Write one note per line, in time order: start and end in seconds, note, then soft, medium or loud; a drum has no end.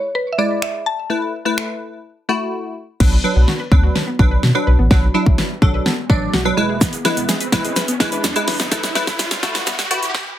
0.00 0.13 C#5 medium
0.15 0.23 B4 medium
0.33 0.38 E5 medium
0.38 0.84 G#3 medium
0.38 0.84 E4 medium
0.38 0.63 D5 medium
0.38 0.84 D5 medium
0.62 0.87 E5 medium
0.62 finger snap loud
0.86 1.30 A5 loud
1.10 1.33 A3 medium
1.10 1.33 E4 medium
1.10 1.33 B4 medium
1.45 1.99 A3 medium
1.45 1.99 E4 medium
1.45 1.99 B4 loud
1.58 finger snap loud
2.29 2.74 A3 medium
2.29 2.75 E4 medium
2.29 2.75 F#4 loud
3.00 3.17 B1 loud
3.00 3.15 F#3 medium
3.00 3.10 B3 medium
3.00 3.16 D4 medium
3.00 3.16 B4 medium
3.00 kick loud
3.00 snare medium
3.00 crash medium
3.00 riser medium
3.12 3.22 F#4 medium
3.24 3.54 F#3 medium
3.24 3.55 D4 medium
3.24 3.55 B4 loud
3.36 3.45 B1 loud
3.36 3.46 B3 medium
3.48 3.58 F#4 medium
3.48 snare medium
3.60 3.70 B4 medium
3.72 3.89 D2 medium
3.72 4.02 F#3 medium
3.72 3.82 B3 medium
3.72 4.02 D4 medium
3.72 4.02 B4 loud
3.72 kick loud
3.83 3.94 F#4 medium
3.95 4.06 B4 medium
3.95 snare medium
4.07 4.18 B3 medium
4.19 4.36 B1 medium
4.19 4.42 F#3 medium
4.19 4.42 D4 medium
4.19 4.29 F#4 medium
4.19 4.42 B4 loud
4.19 kick medium
4.31 4.41 B4 medium
4.43 4.52 B2 loud
4.43 snare medium
4.55 4.78 F#3 medium
4.55 4.78 D4 medium
4.55 4.65 F#4 medium
4.55 4.78 B4 medium
4.67 4.75 B1 medium
4.67 4.77 B4 medium
4.79 4.87 A1 loud
4.79 4.89 B3 medium
4.91 5.08 B1 loud
4.91 5.06 F#3 medium
4.91 5.06 D4 medium
4.91 5.01 F#4 loud
4.91 5.06 B4 loud
4.91 kick loud
4.91 snare medium
5.14 5.45 F#3 medium
5.14 5.45 D4 medium
5.14 5.45 E4 loud
5.26 5.35 B1 loud
5.26 kick medium
5.38 5.49 B4 medium
5.38 snare medium
5.62 5.79 B1 medium
5.62 5.92 F#3 medium
5.62 5.93 D4 medium
5.62 5.72 F#4 medium
5.62 5.93 A4 loud
5.62 kick loud
5.74 5.84 B4 medium
5.86 5.96 B3 medium
5.86 snare medium
6.09 6.27 A1 medium
6.09 6.32 F#3 medium
6.09 6.33 D4 medium
6.09 6.20 B4 medium
6.09 6.33 D5 loud
6.09 kick medium
6.33 6.51 B1 loud
6.33 6.44 F#4 medium
6.33 snare medium
6.45 6.57 F#3 medium
6.45 6.57 D4 medium
6.45 6.56 B4 loud
6.57 6.92 E1 medium
6.57 6.95 G#3 medium
6.57 6.95 E4 medium
6.57 6.96 B4 loud
6.69 6.79 G#4 medium
6.81 6.91 B3 loud
6.81 kick loud
6.81 snare medium
6.81 closed hi-hat medium
6.81 shaker medium
6.93 7.03 G#4 medium
6.93 closed hi-hat medium
6.93 shaker soft
7.05 7.35 G#3 medium
7.05 7.35 E4 medium
7.05 7.36 B4 loud
7.05 snare medium
7.05 closed hi-hat medium
7.17 7.25 E1 loud
7.17 7.27 B3 medium
7.17 closed hi-hat medium
7.17 shaker soft
7.29 7.39 G#4 medium
7.29 snare loud
7.29 closed hi-hat loud
7.29 shaker medium
7.41 7.51 B4 medium
7.41 closed hi-hat medium
7.41 shaker soft
7.52 7.70 E1 medium
7.52 7.83 G#3 medium
7.52 7.63 B3 medium
7.52 7.83 E4 medium
7.52 7.83 B4 loud
7.52 kick loud
7.52 snare medium
7.52 closed hi-hat medium
7.65 7.75 G#4 medium
7.65 closed hi-hat medium
7.65 shaker medium
7.76 7.87 B4 loud
7.76 snare loud
7.76 closed hi-hat medium
7.76 shaker medium
7.88 7.98 B3 medium
7.88 closed hi-hat medium
7.88 shaker soft
8.00 8.17 G#1 medium
8.00 8.23 G#3 loud
8.00 8.23 E4 medium
8.00 8.10 G#4 medium
8.00 8.23 B4 loud
8.00 kick medium
8.00 snare loud
8.00 closed hi-hat medium
8.12 8.22 B4 medium
8.12 closed hi-hat medium
8.12 shaker soft
8.24 8.33 E2 loud
8.24 snare loud
8.24 closed hi-hat medium
8.24 shaker medium
8.36 8.59 G#3 medium
8.36 8.59 E4 medium
8.36 8.46 G#4 medium
8.36 8.59 B4 loud
8.36 closed hi-hat medium
8.36 shaker soft
8.48 8.56 G#1 medium
8.48 8.58 B4 medium
8.48 snare loud
8.48 open hi-hat medium
8.60 8.68 G#1 loud
8.60 8.70 B3 medium
8.60 snare loud
8.60 closed hi-hat medium
8.60 shaker medium
8.71 8.89 A1 loud
8.71 8.87 A3 medium
8.71 8.87 E4 medium
8.71 8.82 A4 loud
8.71 8.87 B4 loud
8.71 kick loud
8.71 snare loud
8.71 closed hi-hat medium
8.71 shaker medium
8.83 snare loud
8.83 closed hi-hat medium
8.83 shaker medium
8.95 9.26 A3 medium
8.95 9.26 E4 medium
8.95 9.26 B4 loud
8.95 snare loud
8.95 closed hi-hat medium
9.07 9.16 A1 loud
9.07 kick medium
9.07 snare loud
9.07 closed hi-hat medium
9.07 shaker medium
9.19 9.29 B4 medium
9.19 snare loud
9.19 closed hi-hat loud
9.19 shaker medium
9.31 snare loud
9.31 closed hi-hat medium
9.31 shaker soft
9.43 9.60 A1 medium
9.43 9.73 A3 medium
9.43 9.74 E4 medium
9.43 9.74 F#4 loud
9.43 9.53 A4 medium
9.43 kick loud
9.43 snare loud
9.43 closed hi-hat medium
9.55 9.65 B4 medium
9.55 snare loud
9.55 closed hi-hat medium
9.55 shaker soft
9.67 9.77 B3 loud
9.67 snare loud
9.67 closed hi-hat medium
9.67 shaker medium
9.79 snare loud
9.79 closed hi-hat medium
9.79 shaker soft
9.91 10.08 A1 medium
9.91 10.14 A3 medium
9.91 10.14 E4 medium
9.91 10.14 F#4 loud
9.91 10.01 B4 medium
9.91 closed hi-hat medium
10.03 closed hi-hat medium
10.03 shaker soft
10.15 kick loud
10.15 snare medium